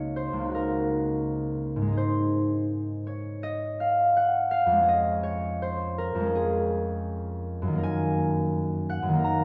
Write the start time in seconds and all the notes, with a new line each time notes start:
Already playing: C#2 A#3 D#4 F#4 C#5 D#5
0.16 C5
0.33 C#2
0.39 A#3
0.44 D#4
0.49 F#4
0.55 A#4
1.76 G#2
1.81 G#3
1.87 D#4
1.92 G#4
1.97 C5
3.07 C#5
3.43 D#5
3.80 F5
4.17 F#5
4.51 F5
4.66 F2
4.72 G#3
4.77 C#4
4.82 G#4
4.88 D#5
5.23 C#5
5.62 C5
5.98 A#4
6.15 F2
6.20 G#3
6.25 C#4
6.35 G#4
7.62 F#2
7.67 D#3
7.73 A#3
7.78 A#4
7.83 G#5
8.90 F#5
9.02 F#2
9.08 D#3
9.14 A#3
9.19 A#4
9.24 A#5